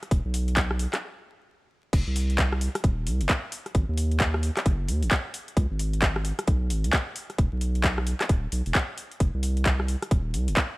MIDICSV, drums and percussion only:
0, 0, Header, 1, 2, 480
1, 0, Start_track
1, 0, Tempo, 454545
1, 118, Time_signature, 4, 2, 24, 8
1, 11381, End_track
2, 0, Start_track
2, 0, Title_t, "Drums"
2, 28, Note_on_c, 9, 37, 29
2, 28, Note_on_c, 9, 42, 36
2, 118, Note_on_c, 9, 36, 113
2, 120, Note_off_c, 9, 42, 0
2, 120, Note_on_c, 9, 42, 69
2, 134, Note_off_c, 9, 37, 0
2, 224, Note_off_c, 9, 36, 0
2, 225, Note_off_c, 9, 42, 0
2, 359, Note_on_c, 9, 46, 113
2, 464, Note_off_c, 9, 46, 0
2, 507, Note_on_c, 9, 42, 40
2, 598, Note_off_c, 9, 42, 0
2, 598, Note_on_c, 9, 36, 115
2, 598, Note_on_c, 9, 39, 117
2, 598, Note_on_c, 9, 42, 70
2, 703, Note_off_c, 9, 39, 0
2, 703, Note_off_c, 9, 42, 0
2, 704, Note_off_c, 9, 36, 0
2, 746, Note_on_c, 9, 37, 65
2, 838, Note_on_c, 9, 46, 108
2, 852, Note_off_c, 9, 37, 0
2, 944, Note_off_c, 9, 46, 0
2, 987, Note_on_c, 9, 37, 69
2, 987, Note_on_c, 9, 39, 59
2, 987, Note_on_c, 9, 42, 65
2, 1093, Note_off_c, 9, 37, 0
2, 1093, Note_off_c, 9, 39, 0
2, 1093, Note_off_c, 9, 42, 0
2, 2038, Note_on_c, 9, 36, 115
2, 2039, Note_on_c, 9, 42, 68
2, 2039, Note_on_c, 9, 49, 104
2, 2143, Note_off_c, 9, 36, 0
2, 2145, Note_off_c, 9, 42, 0
2, 2145, Note_off_c, 9, 49, 0
2, 2279, Note_on_c, 9, 46, 108
2, 2384, Note_off_c, 9, 46, 0
2, 2427, Note_on_c, 9, 42, 38
2, 2518, Note_on_c, 9, 36, 114
2, 2519, Note_off_c, 9, 42, 0
2, 2519, Note_on_c, 9, 39, 119
2, 2519, Note_on_c, 9, 42, 63
2, 2623, Note_off_c, 9, 36, 0
2, 2625, Note_off_c, 9, 39, 0
2, 2625, Note_off_c, 9, 42, 0
2, 2666, Note_on_c, 9, 37, 67
2, 2758, Note_on_c, 9, 46, 105
2, 2772, Note_off_c, 9, 37, 0
2, 2864, Note_off_c, 9, 46, 0
2, 2906, Note_on_c, 9, 37, 69
2, 2906, Note_on_c, 9, 42, 64
2, 2998, Note_off_c, 9, 42, 0
2, 2998, Note_on_c, 9, 36, 116
2, 2998, Note_on_c, 9, 42, 68
2, 3012, Note_off_c, 9, 37, 0
2, 3103, Note_off_c, 9, 36, 0
2, 3104, Note_off_c, 9, 42, 0
2, 3238, Note_on_c, 9, 46, 109
2, 3344, Note_off_c, 9, 46, 0
2, 3386, Note_on_c, 9, 42, 63
2, 3478, Note_off_c, 9, 42, 0
2, 3478, Note_on_c, 9, 36, 110
2, 3478, Note_on_c, 9, 39, 117
2, 3478, Note_on_c, 9, 42, 68
2, 3583, Note_off_c, 9, 36, 0
2, 3584, Note_off_c, 9, 39, 0
2, 3584, Note_off_c, 9, 42, 0
2, 3717, Note_on_c, 9, 46, 112
2, 3823, Note_off_c, 9, 46, 0
2, 3865, Note_on_c, 9, 37, 33
2, 3865, Note_on_c, 9, 42, 34
2, 3957, Note_off_c, 9, 42, 0
2, 3957, Note_on_c, 9, 42, 67
2, 3958, Note_on_c, 9, 36, 125
2, 3971, Note_off_c, 9, 37, 0
2, 4062, Note_off_c, 9, 42, 0
2, 4063, Note_off_c, 9, 36, 0
2, 4197, Note_on_c, 9, 46, 110
2, 4303, Note_off_c, 9, 46, 0
2, 4346, Note_on_c, 9, 42, 35
2, 4438, Note_off_c, 9, 42, 0
2, 4438, Note_on_c, 9, 36, 123
2, 4438, Note_on_c, 9, 39, 126
2, 4438, Note_on_c, 9, 42, 62
2, 4543, Note_off_c, 9, 36, 0
2, 4543, Note_off_c, 9, 39, 0
2, 4543, Note_off_c, 9, 42, 0
2, 4586, Note_on_c, 9, 37, 69
2, 4678, Note_on_c, 9, 46, 102
2, 4691, Note_off_c, 9, 37, 0
2, 4784, Note_off_c, 9, 46, 0
2, 4826, Note_on_c, 9, 37, 69
2, 4826, Note_on_c, 9, 39, 62
2, 4826, Note_on_c, 9, 42, 63
2, 4918, Note_off_c, 9, 42, 0
2, 4918, Note_on_c, 9, 36, 124
2, 4918, Note_on_c, 9, 42, 65
2, 4932, Note_off_c, 9, 37, 0
2, 4932, Note_off_c, 9, 39, 0
2, 5024, Note_off_c, 9, 36, 0
2, 5024, Note_off_c, 9, 42, 0
2, 5158, Note_on_c, 9, 46, 104
2, 5264, Note_off_c, 9, 46, 0
2, 5306, Note_on_c, 9, 46, 60
2, 5398, Note_on_c, 9, 36, 120
2, 5398, Note_on_c, 9, 39, 125
2, 5398, Note_on_c, 9, 42, 67
2, 5412, Note_off_c, 9, 46, 0
2, 5504, Note_off_c, 9, 36, 0
2, 5504, Note_off_c, 9, 39, 0
2, 5504, Note_off_c, 9, 42, 0
2, 5638, Note_on_c, 9, 46, 104
2, 5744, Note_off_c, 9, 46, 0
2, 5788, Note_on_c, 9, 42, 34
2, 5879, Note_on_c, 9, 36, 124
2, 5880, Note_off_c, 9, 42, 0
2, 5880, Note_on_c, 9, 42, 65
2, 5984, Note_off_c, 9, 36, 0
2, 5985, Note_off_c, 9, 42, 0
2, 6119, Note_on_c, 9, 46, 107
2, 6224, Note_off_c, 9, 46, 0
2, 6267, Note_on_c, 9, 42, 36
2, 6359, Note_off_c, 9, 42, 0
2, 6359, Note_on_c, 9, 36, 124
2, 6359, Note_on_c, 9, 39, 126
2, 6359, Note_on_c, 9, 42, 62
2, 6464, Note_off_c, 9, 36, 0
2, 6464, Note_off_c, 9, 39, 0
2, 6464, Note_off_c, 9, 42, 0
2, 6506, Note_on_c, 9, 37, 67
2, 6597, Note_on_c, 9, 46, 102
2, 6611, Note_off_c, 9, 37, 0
2, 6703, Note_off_c, 9, 46, 0
2, 6746, Note_on_c, 9, 37, 67
2, 6746, Note_on_c, 9, 42, 61
2, 6837, Note_off_c, 9, 42, 0
2, 6837, Note_on_c, 9, 42, 67
2, 6839, Note_on_c, 9, 36, 119
2, 6851, Note_off_c, 9, 37, 0
2, 6943, Note_off_c, 9, 42, 0
2, 6944, Note_off_c, 9, 36, 0
2, 7077, Note_on_c, 9, 46, 105
2, 7183, Note_off_c, 9, 46, 0
2, 7226, Note_on_c, 9, 42, 61
2, 7318, Note_off_c, 9, 42, 0
2, 7318, Note_on_c, 9, 36, 124
2, 7318, Note_on_c, 9, 39, 127
2, 7318, Note_on_c, 9, 42, 62
2, 7423, Note_off_c, 9, 39, 0
2, 7423, Note_off_c, 9, 42, 0
2, 7424, Note_off_c, 9, 36, 0
2, 7557, Note_on_c, 9, 46, 102
2, 7663, Note_off_c, 9, 46, 0
2, 7707, Note_on_c, 9, 37, 31
2, 7707, Note_on_c, 9, 42, 33
2, 7798, Note_off_c, 9, 42, 0
2, 7798, Note_on_c, 9, 36, 121
2, 7798, Note_on_c, 9, 42, 64
2, 7812, Note_off_c, 9, 37, 0
2, 7903, Note_off_c, 9, 42, 0
2, 7904, Note_off_c, 9, 36, 0
2, 8038, Note_on_c, 9, 46, 98
2, 8143, Note_off_c, 9, 46, 0
2, 8186, Note_on_c, 9, 42, 37
2, 8278, Note_off_c, 9, 42, 0
2, 8278, Note_on_c, 9, 36, 124
2, 8278, Note_on_c, 9, 39, 127
2, 8278, Note_on_c, 9, 42, 65
2, 8384, Note_off_c, 9, 36, 0
2, 8384, Note_off_c, 9, 39, 0
2, 8384, Note_off_c, 9, 42, 0
2, 8427, Note_on_c, 9, 37, 67
2, 8518, Note_on_c, 9, 46, 98
2, 8532, Note_off_c, 9, 37, 0
2, 8624, Note_off_c, 9, 46, 0
2, 8666, Note_on_c, 9, 37, 66
2, 8666, Note_on_c, 9, 39, 64
2, 8666, Note_on_c, 9, 42, 65
2, 8758, Note_off_c, 9, 42, 0
2, 8758, Note_on_c, 9, 36, 122
2, 8758, Note_on_c, 9, 42, 65
2, 8772, Note_off_c, 9, 37, 0
2, 8772, Note_off_c, 9, 39, 0
2, 8863, Note_off_c, 9, 42, 0
2, 8864, Note_off_c, 9, 36, 0
2, 8997, Note_on_c, 9, 46, 104
2, 9103, Note_off_c, 9, 46, 0
2, 9145, Note_on_c, 9, 46, 58
2, 9238, Note_on_c, 9, 36, 115
2, 9238, Note_on_c, 9, 39, 125
2, 9238, Note_on_c, 9, 42, 64
2, 9251, Note_off_c, 9, 46, 0
2, 9343, Note_off_c, 9, 36, 0
2, 9343, Note_off_c, 9, 39, 0
2, 9343, Note_off_c, 9, 42, 0
2, 9478, Note_on_c, 9, 46, 97
2, 9584, Note_off_c, 9, 46, 0
2, 9625, Note_on_c, 9, 42, 34
2, 9717, Note_off_c, 9, 42, 0
2, 9717, Note_on_c, 9, 42, 71
2, 9718, Note_on_c, 9, 36, 115
2, 9823, Note_off_c, 9, 36, 0
2, 9823, Note_off_c, 9, 42, 0
2, 9957, Note_on_c, 9, 46, 100
2, 10063, Note_off_c, 9, 46, 0
2, 10105, Note_on_c, 9, 42, 37
2, 10197, Note_on_c, 9, 36, 116
2, 10198, Note_off_c, 9, 42, 0
2, 10198, Note_on_c, 9, 39, 117
2, 10198, Note_on_c, 9, 42, 68
2, 10303, Note_off_c, 9, 36, 0
2, 10303, Note_off_c, 9, 39, 0
2, 10303, Note_off_c, 9, 42, 0
2, 10346, Note_on_c, 9, 37, 62
2, 10438, Note_on_c, 9, 46, 94
2, 10452, Note_off_c, 9, 37, 0
2, 10543, Note_off_c, 9, 46, 0
2, 10586, Note_on_c, 9, 37, 63
2, 10586, Note_on_c, 9, 42, 67
2, 10678, Note_off_c, 9, 42, 0
2, 10678, Note_on_c, 9, 36, 120
2, 10678, Note_on_c, 9, 42, 66
2, 10692, Note_off_c, 9, 37, 0
2, 10783, Note_off_c, 9, 36, 0
2, 10784, Note_off_c, 9, 42, 0
2, 10918, Note_on_c, 9, 46, 97
2, 11023, Note_off_c, 9, 46, 0
2, 11066, Note_on_c, 9, 42, 65
2, 11158, Note_off_c, 9, 42, 0
2, 11158, Note_on_c, 9, 36, 114
2, 11158, Note_on_c, 9, 39, 123
2, 11158, Note_on_c, 9, 42, 69
2, 11263, Note_off_c, 9, 36, 0
2, 11264, Note_off_c, 9, 39, 0
2, 11264, Note_off_c, 9, 42, 0
2, 11381, End_track
0, 0, End_of_file